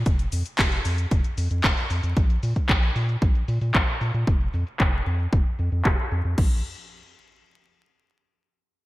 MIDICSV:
0, 0, Header, 1, 3, 480
1, 0, Start_track
1, 0, Tempo, 526316
1, 57, Time_signature, 4, 2, 24, 8
1, 8078, End_track
2, 0, Start_track
2, 0, Title_t, "Analog synth bass"
2, 0, Program_c, 0, 38
2, 56, Note_on_c, 0, 29, 99
2, 248, Note_off_c, 0, 29, 0
2, 298, Note_on_c, 0, 41, 87
2, 393, Note_off_c, 0, 41, 0
2, 536, Note_on_c, 0, 29, 91
2, 728, Note_off_c, 0, 29, 0
2, 777, Note_on_c, 0, 41, 98
2, 968, Note_off_c, 0, 41, 0
2, 1016, Note_on_c, 0, 29, 100
2, 1112, Note_off_c, 0, 29, 0
2, 1256, Note_on_c, 0, 41, 100
2, 1352, Note_off_c, 0, 41, 0
2, 1376, Note_on_c, 0, 41, 96
2, 1472, Note_off_c, 0, 41, 0
2, 1496, Note_on_c, 0, 29, 82
2, 1592, Note_off_c, 0, 29, 0
2, 1736, Note_on_c, 0, 41, 82
2, 1832, Note_off_c, 0, 41, 0
2, 1856, Note_on_c, 0, 41, 84
2, 1952, Note_off_c, 0, 41, 0
2, 1976, Note_on_c, 0, 34, 96
2, 2168, Note_off_c, 0, 34, 0
2, 2217, Note_on_c, 0, 46, 89
2, 2312, Note_off_c, 0, 46, 0
2, 2456, Note_on_c, 0, 34, 91
2, 2648, Note_off_c, 0, 34, 0
2, 2697, Note_on_c, 0, 46, 91
2, 2888, Note_off_c, 0, 46, 0
2, 2937, Note_on_c, 0, 34, 92
2, 3129, Note_off_c, 0, 34, 0
2, 3176, Note_on_c, 0, 46, 96
2, 3272, Note_off_c, 0, 46, 0
2, 3296, Note_on_c, 0, 46, 84
2, 3392, Note_off_c, 0, 46, 0
2, 3417, Note_on_c, 0, 34, 85
2, 3512, Note_off_c, 0, 34, 0
2, 3658, Note_on_c, 0, 46, 76
2, 3753, Note_off_c, 0, 46, 0
2, 3778, Note_on_c, 0, 46, 97
2, 3873, Note_off_c, 0, 46, 0
2, 3897, Note_on_c, 0, 29, 97
2, 4089, Note_off_c, 0, 29, 0
2, 4139, Note_on_c, 0, 41, 89
2, 4233, Note_off_c, 0, 41, 0
2, 4377, Note_on_c, 0, 29, 88
2, 4568, Note_off_c, 0, 29, 0
2, 4619, Note_on_c, 0, 41, 93
2, 4810, Note_off_c, 0, 41, 0
2, 4858, Note_on_c, 0, 29, 101
2, 4953, Note_off_c, 0, 29, 0
2, 5099, Note_on_c, 0, 41, 101
2, 5194, Note_off_c, 0, 41, 0
2, 5218, Note_on_c, 0, 41, 99
2, 5313, Note_off_c, 0, 41, 0
2, 5337, Note_on_c, 0, 29, 84
2, 5433, Note_off_c, 0, 29, 0
2, 5578, Note_on_c, 0, 41, 98
2, 5673, Note_off_c, 0, 41, 0
2, 5698, Note_on_c, 0, 41, 83
2, 5793, Note_off_c, 0, 41, 0
2, 5817, Note_on_c, 0, 34, 94
2, 6040, Note_off_c, 0, 34, 0
2, 8078, End_track
3, 0, Start_track
3, 0, Title_t, "Drums"
3, 55, Note_on_c, 9, 42, 63
3, 55, Note_on_c, 9, 69, 36
3, 56, Note_on_c, 9, 36, 121
3, 146, Note_off_c, 9, 42, 0
3, 146, Note_off_c, 9, 69, 0
3, 147, Note_off_c, 9, 36, 0
3, 175, Note_on_c, 9, 42, 37
3, 175, Note_on_c, 9, 69, 19
3, 266, Note_off_c, 9, 42, 0
3, 266, Note_off_c, 9, 69, 0
3, 294, Note_on_c, 9, 46, 93
3, 294, Note_on_c, 9, 69, 62
3, 385, Note_off_c, 9, 46, 0
3, 385, Note_off_c, 9, 69, 0
3, 415, Note_on_c, 9, 42, 39
3, 415, Note_on_c, 9, 69, 28
3, 506, Note_off_c, 9, 42, 0
3, 506, Note_off_c, 9, 69, 0
3, 535, Note_on_c, 9, 39, 118
3, 535, Note_on_c, 9, 42, 68
3, 535, Note_on_c, 9, 69, 38
3, 536, Note_on_c, 9, 36, 125
3, 626, Note_off_c, 9, 39, 0
3, 626, Note_off_c, 9, 42, 0
3, 626, Note_off_c, 9, 69, 0
3, 627, Note_off_c, 9, 36, 0
3, 655, Note_on_c, 9, 42, 39
3, 655, Note_on_c, 9, 69, 19
3, 746, Note_off_c, 9, 42, 0
3, 746, Note_off_c, 9, 69, 0
3, 775, Note_on_c, 9, 46, 98
3, 775, Note_on_c, 9, 69, 63
3, 866, Note_off_c, 9, 46, 0
3, 866, Note_off_c, 9, 69, 0
3, 895, Note_on_c, 9, 42, 40
3, 895, Note_on_c, 9, 69, 28
3, 986, Note_off_c, 9, 42, 0
3, 986, Note_off_c, 9, 69, 0
3, 1015, Note_on_c, 9, 42, 65
3, 1015, Note_on_c, 9, 69, 35
3, 1016, Note_on_c, 9, 36, 118
3, 1106, Note_off_c, 9, 42, 0
3, 1106, Note_off_c, 9, 69, 0
3, 1107, Note_off_c, 9, 36, 0
3, 1135, Note_on_c, 9, 42, 37
3, 1135, Note_on_c, 9, 69, 18
3, 1226, Note_off_c, 9, 42, 0
3, 1226, Note_off_c, 9, 69, 0
3, 1256, Note_on_c, 9, 46, 102
3, 1256, Note_on_c, 9, 69, 64
3, 1347, Note_off_c, 9, 46, 0
3, 1347, Note_off_c, 9, 69, 0
3, 1375, Note_on_c, 9, 42, 39
3, 1375, Note_on_c, 9, 69, 27
3, 1466, Note_off_c, 9, 42, 0
3, 1466, Note_off_c, 9, 69, 0
3, 1496, Note_on_c, 9, 36, 120
3, 1496, Note_on_c, 9, 39, 117
3, 1496, Note_on_c, 9, 42, 66
3, 1496, Note_on_c, 9, 69, 37
3, 1587, Note_off_c, 9, 36, 0
3, 1587, Note_off_c, 9, 39, 0
3, 1587, Note_off_c, 9, 42, 0
3, 1587, Note_off_c, 9, 69, 0
3, 1616, Note_on_c, 9, 42, 38
3, 1616, Note_on_c, 9, 69, 18
3, 1707, Note_off_c, 9, 42, 0
3, 1707, Note_off_c, 9, 69, 0
3, 1735, Note_on_c, 9, 46, 100
3, 1735, Note_on_c, 9, 69, 66
3, 1826, Note_off_c, 9, 46, 0
3, 1826, Note_off_c, 9, 69, 0
3, 1855, Note_on_c, 9, 42, 38
3, 1855, Note_on_c, 9, 69, 27
3, 1947, Note_off_c, 9, 42, 0
3, 1947, Note_off_c, 9, 69, 0
3, 1976, Note_on_c, 9, 36, 121
3, 1976, Note_on_c, 9, 42, 61
3, 1976, Note_on_c, 9, 69, 38
3, 2067, Note_off_c, 9, 36, 0
3, 2067, Note_off_c, 9, 42, 0
3, 2067, Note_off_c, 9, 69, 0
3, 2097, Note_on_c, 9, 42, 37
3, 2097, Note_on_c, 9, 69, 18
3, 2188, Note_off_c, 9, 42, 0
3, 2188, Note_off_c, 9, 69, 0
3, 2216, Note_on_c, 9, 46, 93
3, 2216, Note_on_c, 9, 69, 64
3, 2307, Note_off_c, 9, 46, 0
3, 2307, Note_off_c, 9, 69, 0
3, 2336, Note_on_c, 9, 36, 61
3, 2336, Note_on_c, 9, 42, 38
3, 2336, Note_on_c, 9, 69, 29
3, 2427, Note_off_c, 9, 36, 0
3, 2427, Note_off_c, 9, 42, 0
3, 2427, Note_off_c, 9, 69, 0
3, 2456, Note_on_c, 9, 36, 122
3, 2456, Note_on_c, 9, 39, 125
3, 2456, Note_on_c, 9, 42, 66
3, 2456, Note_on_c, 9, 69, 38
3, 2547, Note_off_c, 9, 36, 0
3, 2548, Note_off_c, 9, 39, 0
3, 2548, Note_off_c, 9, 42, 0
3, 2548, Note_off_c, 9, 69, 0
3, 2577, Note_on_c, 9, 42, 38
3, 2577, Note_on_c, 9, 69, 20
3, 2668, Note_off_c, 9, 42, 0
3, 2668, Note_off_c, 9, 69, 0
3, 2697, Note_on_c, 9, 46, 99
3, 2697, Note_on_c, 9, 69, 63
3, 2788, Note_off_c, 9, 46, 0
3, 2788, Note_off_c, 9, 69, 0
3, 2817, Note_on_c, 9, 42, 38
3, 2817, Note_on_c, 9, 69, 28
3, 2908, Note_off_c, 9, 42, 0
3, 2908, Note_off_c, 9, 69, 0
3, 2936, Note_on_c, 9, 36, 121
3, 2937, Note_on_c, 9, 42, 64
3, 2937, Note_on_c, 9, 69, 38
3, 3028, Note_off_c, 9, 36, 0
3, 3028, Note_off_c, 9, 42, 0
3, 3028, Note_off_c, 9, 69, 0
3, 3056, Note_on_c, 9, 42, 36
3, 3056, Note_on_c, 9, 69, 18
3, 3148, Note_off_c, 9, 42, 0
3, 3148, Note_off_c, 9, 69, 0
3, 3176, Note_on_c, 9, 46, 100
3, 3176, Note_on_c, 9, 69, 68
3, 3267, Note_off_c, 9, 46, 0
3, 3267, Note_off_c, 9, 69, 0
3, 3296, Note_on_c, 9, 46, 56
3, 3296, Note_on_c, 9, 69, 29
3, 3387, Note_off_c, 9, 46, 0
3, 3387, Note_off_c, 9, 69, 0
3, 3417, Note_on_c, 9, 36, 125
3, 3417, Note_on_c, 9, 39, 120
3, 3417, Note_on_c, 9, 69, 37
3, 3508, Note_off_c, 9, 36, 0
3, 3508, Note_off_c, 9, 39, 0
3, 3508, Note_off_c, 9, 69, 0
3, 3538, Note_on_c, 9, 42, 37
3, 3538, Note_on_c, 9, 69, 19
3, 3629, Note_off_c, 9, 42, 0
3, 3629, Note_off_c, 9, 69, 0
3, 3657, Note_on_c, 9, 46, 98
3, 3657, Note_on_c, 9, 69, 65
3, 3748, Note_off_c, 9, 46, 0
3, 3748, Note_off_c, 9, 69, 0
3, 3777, Note_on_c, 9, 42, 37
3, 3777, Note_on_c, 9, 69, 28
3, 3869, Note_off_c, 9, 42, 0
3, 3869, Note_off_c, 9, 69, 0
3, 3897, Note_on_c, 9, 36, 118
3, 3898, Note_on_c, 9, 42, 61
3, 3898, Note_on_c, 9, 69, 41
3, 3988, Note_off_c, 9, 36, 0
3, 3989, Note_off_c, 9, 42, 0
3, 3989, Note_off_c, 9, 69, 0
3, 4017, Note_on_c, 9, 42, 37
3, 4017, Note_on_c, 9, 69, 20
3, 4109, Note_off_c, 9, 42, 0
3, 4109, Note_off_c, 9, 69, 0
3, 4137, Note_on_c, 9, 46, 100
3, 4137, Note_on_c, 9, 69, 66
3, 4229, Note_off_c, 9, 46, 0
3, 4229, Note_off_c, 9, 69, 0
3, 4257, Note_on_c, 9, 42, 38
3, 4257, Note_on_c, 9, 69, 30
3, 4348, Note_off_c, 9, 42, 0
3, 4348, Note_off_c, 9, 69, 0
3, 4377, Note_on_c, 9, 36, 123
3, 4377, Note_on_c, 9, 39, 119
3, 4468, Note_off_c, 9, 39, 0
3, 4469, Note_off_c, 9, 36, 0
3, 4496, Note_on_c, 9, 42, 38
3, 4496, Note_on_c, 9, 69, 20
3, 4587, Note_off_c, 9, 42, 0
3, 4587, Note_off_c, 9, 69, 0
3, 4616, Note_on_c, 9, 46, 93
3, 4616, Note_on_c, 9, 69, 65
3, 4707, Note_off_c, 9, 46, 0
3, 4707, Note_off_c, 9, 69, 0
3, 4737, Note_on_c, 9, 42, 38
3, 4737, Note_on_c, 9, 69, 30
3, 4828, Note_off_c, 9, 42, 0
3, 4828, Note_off_c, 9, 69, 0
3, 4857, Note_on_c, 9, 42, 61
3, 4858, Note_on_c, 9, 36, 123
3, 4948, Note_off_c, 9, 42, 0
3, 4949, Note_off_c, 9, 36, 0
3, 4977, Note_on_c, 9, 42, 37
3, 4977, Note_on_c, 9, 69, 19
3, 5068, Note_off_c, 9, 42, 0
3, 5068, Note_off_c, 9, 69, 0
3, 5096, Note_on_c, 9, 46, 98
3, 5096, Note_on_c, 9, 69, 69
3, 5187, Note_off_c, 9, 46, 0
3, 5187, Note_off_c, 9, 69, 0
3, 5216, Note_on_c, 9, 42, 36
3, 5216, Note_on_c, 9, 69, 29
3, 5307, Note_off_c, 9, 42, 0
3, 5307, Note_off_c, 9, 69, 0
3, 5336, Note_on_c, 9, 39, 123
3, 5337, Note_on_c, 9, 36, 122
3, 5427, Note_off_c, 9, 39, 0
3, 5429, Note_off_c, 9, 36, 0
3, 5456, Note_on_c, 9, 42, 36
3, 5456, Note_on_c, 9, 69, 20
3, 5547, Note_off_c, 9, 42, 0
3, 5547, Note_off_c, 9, 69, 0
3, 5576, Note_on_c, 9, 46, 104
3, 5576, Note_on_c, 9, 69, 69
3, 5668, Note_off_c, 9, 46, 0
3, 5668, Note_off_c, 9, 69, 0
3, 5697, Note_on_c, 9, 42, 36
3, 5697, Note_on_c, 9, 69, 29
3, 5788, Note_off_c, 9, 42, 0
3, 5788, Note_off_c, 9, 69, 0
3, 5817, Note_on_c, 9, 36, 111
3, 5817, Note_on_c, 9, 49, 84
3, 5908, Note_off_c, 9, 49, 0
3, 5909, Note_off_c, 9, 36, 0
3, 8078, End_track
0, 0, End_of_file